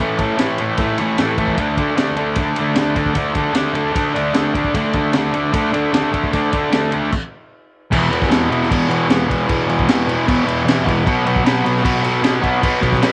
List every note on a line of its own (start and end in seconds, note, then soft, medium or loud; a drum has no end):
0.00 0.37 A2 medium
0.00 0.21 E3 loud
0.00 0.18 A3 loud
0.18 0.38 E3 medium
0.18 0.40 A3 medium
0.18 kick medium
0.18 ride medium
0.38 0.77 A2 medium
0.38 0.60 E3 medium
0.38 0.58 A3 medium
0.38 snare loud
0.38 ride medium
0.58 0.79 E3 medium
0.58 0.81 A3 medium
0.58 ride medium
0.77 1.00 A2 medium
0.77 0.99 E3 medium
0.77 kick loud
0.77 ride medium
0.82 0.98 A3 medium
0.98 1.17 A2 medium
0.98 1.19 E3 medium
0.98 1.21 A3 medium
0.98 ride medium
1.18 1.56 A2 medium
1.18 1.40 E3 medium
1.18 1.38 A3 medium
1.18 snare loud
1.18 ride medium
1.38 1.57 E3 medium
1.38 1.58 A3 medium
1.38 kick medium
1.38 ride medium
1.48 kick medium
1.56 1.95 D3 medium
1.56 1.79 A3 medium
1.56 1.76 D4 medium
1.56 kick medium
1.56 ride medium
1.77 1.97 A3 medium
1.77 1.98 D4 medium
1.77 kick medium
1.77 ride medium
1.96 2.37 D3 medium
1.96 2.19 A3 medium
1.96 2.16 D4 loud
1.96 snare loud
1.96 ride medium
2.17 2.39 A3 medium
2.17 2.40 D4 medium
2.17 ride medium
2.36 2.61 D3 medium
2.36 2.59 A3 medium
2.36 kick loud
2.36 ride medium
2.40 2.58 D4 medium
2.56 2.77 A3 medium
2.56 2.78 D4 medium
2.56 ride medium
2.61 2.75 D3 medium
2.75 3.14 D3 medium
2.75 2.98 A3 medium
2.75 2.95 D4 medium
2.75 snare loud
2.75 ride medium
2.95 3.16 A3 medium
2.95 3.17 D4 medium
2.95 kick medium
2.95 ride medium
3.06 kick medium
3.14 3.53 D3 medium
3.14 3.37 A3 medium
3.14 3.33 D4 loud
3.14 kick medium
3.14 ride medium
3.34 3.54 A3 medium
3.34 3.56 D4 medium
3.34 kick medium
3.34 ride medium
3.53 3.93 D3 medium
3.53 3.76 A3 medium
3.53 3.73 D4 medium
3.53 snare loud
3.53 ride medium
3.74 3.95 A3 medium
3.74 3.96 D4 medium
3.74 ride medium
3.93 4.17 D3 medium
3.93 4.15 A3 medium
3.93 4.14 D4 medium
3.93 kick loud
3.93 ride medium
4.14 4.34 D3 medium
4.14 4.35 A3 medium
4.14 4.37 D4 medium
4.14 ride medium
4.34 4.74 D3 medium
4.34 4.57 A3 medium
4.34 4.54 D4 medium
4.34 snare loud
4.34 ride medium
4.54 4.76 A3 medium
4.54 4.77 D4 medium
4.54 kick medium
4.54 ride medium
4.64 kick medium
4.74 5.13 D3 medium
4.74 4.96 A3 medium
4.74 4.94 D4 loud
4.74 kick medium
4.74 ride medium
4.93 5.14 A3 medium
4.93 5.16 D4 medium
4.93 kick medium
4.93 ride medium
5.13 5.52 D3 medium
5.13 5.36 A3 medium
5.13 5.32 D4 loud
5.13 snare loud
5.13 ride medium
5.33 5.53 A3 medium
5.33 5.55 D4 medium
5.33 ride medium
5.53 5.74 D3 medium
5.53 5.73 A3 medium
5.53 5.71 D4 medium
5.53 kick loud
5.53 ride medium
5.73 5.91 D3 medium
5.73 5.93 A3 medium
5.73 5.94 D4 medium
5.73 ride medium
5.92 6.30 D3 medium
5.92 6.14 A3 medium
5.92 6.11 D4 medium
5.92 snare loud
5.92 ride medium
6.12 6.31 A3 medium
6.12 6.33 D4 medium
6.12 kick medium
6.12 ride medium
6.24 kick medium
6.31 6.70 D3 medium
6.31 6.53 A3 loud
6.31 6.50 D4 medium
6.31 kick medium
6.31 ride medium
6.52 6.71 A3 medium
6.52 6.73 D4 medium
6.52 kick medium
6.52 ride medium
6.71 7.10 D3 medium
6.71 6.93 A3 medium
6.71 6.90 D4 medium
6.71 snare loud
6.71 ride medium
6.91 7.12 A3 medium
6.91 7.11 D4 medium
6.91 ride medium
7.12 kick loud
7.12 crash medium
7.91 8.10 E2 loud
7.91 8.10 B2 loud
7.91 8.11 E3 loud
7.91 kick loud
7.91 crash loud
7.91 crash medium
8.10 8.29 E2 medium
8.10 8.29 B2 medium
8.10 8.30 E3 medium
8.10 crash medium
8.22 kick loud
8.22 snare soft
8.29 8.50 E2 medium
8.29 8.50 B2 medium
8.29 8.50 E3 medium
8.29 snare loud
8.29 crash medium
8.50 8.68 E2 medium
8.50 8.69 B2 medium
8.50 8.69 E3 medium
8.50 crash medium
8.63 snare soft
8.70 8.88 E2 medium
8.70 8.88 B2 loud
8.70 8.88 E3 loud
8.70 kick loud
8.70 crash medium
8.89 9.07 E2 medium
8.89 9.08 B2 medium
8.89 9.09 E3 medium
8.89 crash medium
9.09 9.27 E2 medium
9.09 9.27 B2 medium
9.09 9.28 E3 loud
9.09 snare loud
9.09 crash medium
9.28 9.47 E2 loud
9.28 9.47 B2 loud
9.28 9.48 E3 loud
9.28 kick medium
9.28 crash medium
9.48 9.67 E2 loud
9.48 9.68 B2 loud
9.48 9.69 E3 loud
9.48 kick loud
9.48 crash medium
9.69 9.87 E2 medium
9.69 9.88 B2 medium
9.69 9.88 E3 loud
9.69 crash medium
9.79 kick loud
9.89 10.06 E2 medium
9.89 10.07 B2 medium
9.89 10.07 E3 medium
9.89 snare loud
9.89 crash medium
10.07 10.25 E2 medium
10.07 10.26 B2 medium
10.07 10.27 E3 medium
10.07 crash medium
10.26 10.44 E2 medium
10.26 10.45 B2 loud
10.26 10.46 E3 loud
10.26 kick loud
10.26 crash medium
10.45 10.64 E2 medium
10.45 10.64 B2 medium
10.45 10.65 E3 medium
10.45 crash medium
10.65 10.83 E2 medium
10.65 10.84 B2 medium
10.65 10.85 E3 medium
10.65 snare loud
10.65 crash medium
10.85 11.04 E2 medium
10.85 11.04 B2 medium
10.85 11.05 E3 loud
10.85 kick medium
10.85 crash medium
11.05 11.25 B2 loud
11.05 11.25 F#3 loud
11.05 11.26 B3 loud
11.05 kick loud
11.05 crash medium
11.25 11.43 B2 medium
11.25 11.45 F#3 loud
11.25 11.45 B3 medium
11.25 crash medium
11.36 kick medium
11.44 11.64 B2 medium
11.44 11.64 F#3 medium
11.44 11.66 B3 medium
11.44 snare loud
11.44 crash medium
11.65 11.82 B2 medium
11.65 11.83 F#3 medium
11.65 11.84 B3 medium
11.65 crash medium
11.76 snare soft
11.83 12.01 B2 loud
11.83 12.02 F#3 loud
11.83 12.03 B3 loud
11.83 kick loud
11.83 crash medium
12.03 12.21 B2 medium
12.03 12.22 F#3 medium
12.03 12.23 B3 medium
12.03 crash medium
12.22 12.40 B2 medium
12.22 12.41 F#3 medium
12.22 12.42 B3 loud
12.22 snare loud
12.22 crash medium
12.41 12.61 B2 medium
12.41 12.62 F#3 loud
12.41 12.63 B3 loud
12.41 kick medium
12.41 crash medium
12.62 12.80 B2 medium
12.62 12.81 F#3 loud
12.62 12.83 B3 loud
12.62 kick loud
12.62 crash medium
12.81 13.01 B2 medium
12.81 13.02 F#3 medium
12.81 13.04 B3 medium
12.81 kick medium
12.81 crash medium
12.92 kick medium
12.92 snare soft
13.02 13.12 B2 medium
13.02 13.12 F#3 medium
13.02 13.12 B3 medium
13.02 snare loud
13.02 crash medium